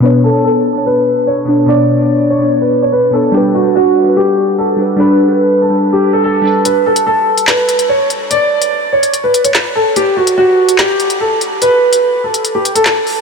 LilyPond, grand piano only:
\new Staff \with { instrumentName = "Grand piano" } { \time 4/4 \key b \minor \tempo 4 = 145 b'8 a'8 a'4 b'4 cis''8 r8 | d''4. cis''8. b'8 cis''16 b'8 a'8 | g'8 fis'8 fis'4 g'4 a'8 r8 | b'4. a'8. g'8 a'16 a'4 |
b'8 a'8 a'4 b'4 cis''8 r8 | d''4. cis''8. b'8 cis''16 b'8 a'8 | g'8 fis'8 fis'4 g'4 a'8 r8 | b'4. a'8. g'8 a'16 r4 | }